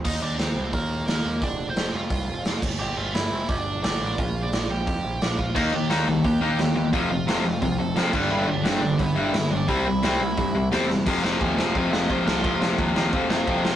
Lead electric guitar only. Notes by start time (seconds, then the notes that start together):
0.04 D#4 D#5
0.22 D4 D5
0.38 C4 C5
0.73 A#3 A#4
1.08 A#3 A#4
1.43 D4 D5
1.69 C4 C5
1.94 F4 F5
2.79 G4 G5
2.97 F4 F5
3.14 E4 E5
3.49 D4 D5
3.83 D4 D5
4.19 F4 F5
4.43 D4 D5
4.70 G4 G5
5.22 D4 D5
5.39 F4 F5
5.55 D#4 D#5
5.75 G4 G5
5.93 A4 A5
6.24 G4 G5
6.93 F4 F5
7.10 F4 F5
7.62 F4 F5
7.78 A4 A5
8.30 E4 E5
8.49 D4 D5
8.66 C4 C5
8.82 D4 D5
8.98 B3 B4
9.16 E4 E5
9.50 D4 D5
9.67 E4 E5
11.40 G#5
11.76 F5
11.92 D#5
12.10 C5
12.27 F4
13.30 A4 F5
13.47 A4 F5
13.64 F4 D5